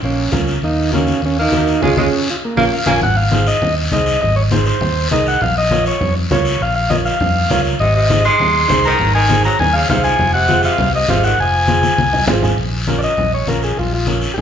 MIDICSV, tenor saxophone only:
0, 0, Header, 1, 2, 480
1, 0, Start_track
1, 0, Key_signature, -5, "minor"
1, 0, Tempo, 298954
1, 1000, Time_signature, 4, 2, 24, 8
1, 23138, End_track
2, 0, Start_track
2, 0, Title_t, "Tenor saxophone"
2, 0, Program_c, 0, 66
2, 57, Note_on_c, 0, 58, 60
2, 496, Note_off_c, 0, 58, 0
2, 1018, Note_on_c, 0, 58, 68
2, 1457, Note_off_c, 0, 58, 0
2, 1503, Note_on_c, 0, 58, 78
2, 1940, Note_off_c, 0, 58, 0
2, 2005, Note_on_c, 0, 58, 67
2, 2208, Note_off_c, 0, 58, 0
2, 2237, Note_on_c, 0, 58, 94
2, 2892, Note_off_c, 0, 58, 0
2, 2940, Note_on_c, 0, 56, 81
2, 3050, Note_off_c, 0, 56, 0
2, 3172, Note_on_c, 0, 56, 95
2, 3284, Note_off_c, 0, 56, 0
2, 4126, Note_on_c, 0, 58, 94
2, 4241, Note_off_c, 0, 58, 0
2, 4605, Note_on_c, 0, 58, 86
2, 4721, Note_off_c, 0, 58, 0
2, 12537, Note_on_c, 0, 48, 82
2, 12758, Note_off_c, 0, 48, 0
2, 12776, Note_on_c, 0, 48, 78
2, 13220, Note_off_c, 0, 48, 0
2, 13253, Note_on_c, 0, 56, 95
2, 14148, Note_off_c, 0, 56, 0
2, 14244, Note_on_c, 0, 51, 93
2, 14675, Note_off_c, 0, 51, 0
2, 14697, Note_on_c, 0, 51, 97
2, 15140, Note_off_c, 0, 51, 0
2, 15175, Note_on_c, 0, 54, 83
2, 15396, Note_off_c, 0, 54, 0
2, 15410, Note_on_c, 0, 51, 79
2, 15633, Note_off_c, 0, 51, 0
2, 15661, Note_on_c, 0, 49, 85
2, 15856, Note_off_c, 0, 49, 0
2, 15865, Note_on_c, 0, 48, 86
2, 16099, Note_off_c, 0, 48, 0
2, 16122, Note_on_c, 0, 53, 76
2, 16571, Note_off_c, 0, 53, 0
2, 16605, Note_on_c, 0, 48, 96
2, 17052, Note_off_c, 0, 48, 0
2, 17093, Note_on_c, 0, 48, 94
2, 17536, Note_off_c, 0, 48, 0
2, 17546, Note_on_c, 0, 48, 73
2, 17779, Note_off_c, 0, 48, 0
2, 17804, Note_on_c, 0, 48, 88
2, 18028, Note_off_c, 0, 48, 0
2, 18071, Note_on_c, 0, 51, 76
2, 18282, Note_off_c, 0, 51, 0
2, 18316, Note_on_c, 0, 53, 77
2, 19674, Note_off_c, 0, 53, 0
2, 23138, End_track
0, 0, End_of_file